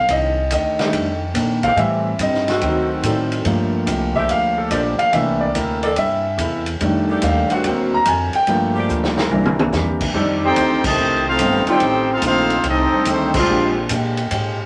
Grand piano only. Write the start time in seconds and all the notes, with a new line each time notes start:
0.11 D#5
0.52 D#5
0.80 D#3 G3 A3 D4
1.64 F5
1.74 E3 G3 D#5
1.79 C4 E5
2.21 D#5
2.62 D#3 F#3 C4
3.46 F3 A3 A#3
4.16 E5
4.31 F5
4.58 A4
4.72 D5
4.99 F5
5.12 E3 A3 A#3 D4 E5
5.41 D5
5.55 A#4
5.83 D5
5.98 E5
6.81 D#3 G3 A3 D4
7.24 F5
7.51 F#5
7.66 F#3 A#3 C4
7.94 A#5
8.08 G#5
8.35 G5
8.48 F3 A3 A#3
9.32 E3 A#3 D4
10.15 G3 C4 D4 D#4 A4
11.68 G3 C4 D4 D#4 A4
12.92 G3 C4 D4 D#4 A4
13.47 G#3 C4 D4 F4 G4